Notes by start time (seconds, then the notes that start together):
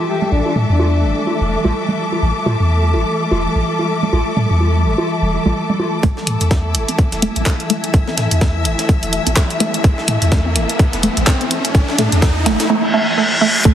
Already playing: E3 G3 A3 A4 E5 D6
0.08 G4
0.22 G4, low conga
0.32 A1 D4
0.46 D4, high conga
0.56 A2, low conga
0.69 E2 D4
0.79 high conga
1.03 G1
1.27 high conga
1.41 E1
1.65 A1, high conga, low conga
1.89 low conga
2.12 high conga
2.22 A1
2.46 A2, high conga, low conga
2.60 E2
2.94 G1, high conga
3.31 E1, high conga
3.55 A1
3.79 high conga
4.03 low conga
4.13 A1, high conga
4.37 A2, low conga
4.50 E2
4.60 high conga
4.84 G1
4.98 high conga
5.22 E1
5.46 A1, high conga, low conga
5.70 low conga
5.80 high conga
6.03 A1 E3 A3 E4, kick, closed hi-hat, riser
6.17 snare
6.27 A2 E6, closed hi-hat
6.39 E2 E5, closed hi-hat
6.51 A3, kick, snare, closed hi-hat
6.75 G1, closed hi-hat
6.88 C4, closed hi-hat
6.99 kick, closed hi-hat
7.12 E1, snare, closed hi-hat
7.22 A3, closed hi-hat
7.36 A1, closed hi-hat
7.46 kick, snare, clap, closed hi-hat
7.60 closed hi-hat
7.70 A3, closed hi-hat
7.84 closed hi-hat
7.94 A1, kick, closed hi-hat
8.08 C4, snare
8.18 A2, snare, closed hi-hat
8.31 E2, closed hi-hat
8.41 A3, kick, snare, closed hi-hat
8.65 G1, closed hi-hat
8.79 snare, closed hi-hat
8.89 A3, kick, closed hi-hat
9.03 E1, closed hi-hat
9.13 closed hi-hat
9.27 A1 C4, closed hi-hat
9.37 kick, snare, clap, closed hi-hat
9.50 closed hi-hat
9.60 A3, closed hi-hat
9.74 closed hi-hat
9.84 A1, kick, closed hi-hat
9.98 snare
10.08 A2 A3, closed hi-hat
10.22 E2, closed hi-hat
10.32 kick, snare, closed hi-hat
10.46 C4
10.56 G1, closed hi-hat
10.69 closed hi-hat
10.79 kick, closed hi-hat
10.93 E1, snare, closed hi-hat
11.03 A3, closed hi-hat
11.17 A1, closed hi-hat
11.27 kick, snare, clap, closed hi-hat
11.41 C4, closed hi-hat
11.51 closed hi-hat
11.65 closed hi-hat
11.75 A1, kick, closed hi-hat
11.88 snare
11.98 A2 A3, snare, closed hi-hat
12.12 E2, closed hi-hat
12.22 kick, snare, closed hi-hat
12.46 G1 A3, snare, closed hi-hat
12.60 snare, closed hi-hat
12.70 A3, reverse cymbal
12.94 A3
13.18 A3
13.41 A3
13.65 A1 A3, kick, closed hi-hat